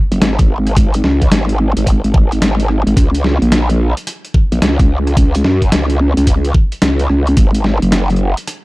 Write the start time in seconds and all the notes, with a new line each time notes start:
0.12 F#1, closed hi-hat
0.21 G#1, snare, closed hi-hat
0.39 kick, closed hi-hat
0.67 cross-stick, closed hi-hat
0.77 kick, closed hi-hat
0.94 closed hi-hat
1.04 C#2, snare
1.22 kick, closed hi-hat
1.31 G#1, cross-stick, snare, closed hi-hat
1.49 closed hi-hat
1.77 G#1, closed hi-hat
1.87 kick, closed hi-hat
2.04 G#1, closed hi-hat
2.14 kick
2.32 closed hi-hat
2.41 G#1, snare, closed hi-hat
2.60 closed hi-hat
2.69 cross-stick
2.87 G#1, closed hi-hat
2.97 C#2, kick, closed hi-hat
3.15 closed hi-hat
3.24 snare
3.42 A#1, closed hi-hat
3.52 cross-stick, snare, closed hi-hat
3.70 closed hi-hat
3.97 closed hi-hat
4.07 cross-stick, closed hi-hat
4.25 closed hi-hat
4.34 kick
4.52 A#1, closed hi-hat
4.62 C#2, snare, closed hi-hat
4.79 kick, closed hi-hat
5.07 cross-stick, closed hi-hat
5.17 kick, closed hi-hat
5.35 closed hi-hat
5.44 F#2, snare
5.62 kick, closed hi-hat
5.72 C#2, cross-stick, snare, closed hi-hat
5.90 closed hi-hat
6.17 C#2, closed hi-hat
6.27 kick, closed hi-hat
6.45 closed hi-hat
6.54 kick
6.72 closed hi-hat
6.82 C#2, snare, closed hi-hat
7.00 closed hi-hat
7.09 C#2, cross-stick
7.27 closed hi-hat
7.37 G#1, kick, closed hi-hat
7.55 closed hi-hat
7.64 snare
7.82 F#1, closed hi-hat
7.92 cross-stick, snare, closed hi-hat
8.10 closed hi-hat
8.16 closed hi-hat
8.37 closed hi-hat
8.47 cross-stick, closed hi-hat